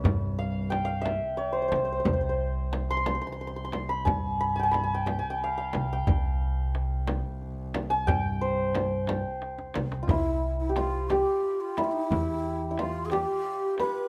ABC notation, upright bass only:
X:1
M:6/8
L:1/8
Q:3/8=60
K:none
V:1 name="Upright bass" clef=bass
G,,4 z C,, | C,,4 z2 | G,,4 z C,, | C,,4 z2 |
G,,4 z C,, | C,,4 z2 | E,,4 z2 |]